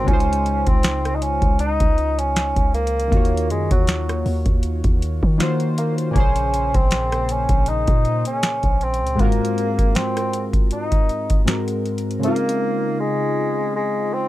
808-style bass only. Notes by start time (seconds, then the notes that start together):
0.08 C#2
0.67 C#2
1.42 C#2
1.81 C#2
2.56 C#2
3.12 D#2
3.50 F#2
3.71 D#2
4.26 D#2
4.46 D#2
4.84 D#2
5.23 D#3
6.16 A#1
6.75 A#1
7.49 A#1
7.88 A#2
8.64 A#1
9.01 C#2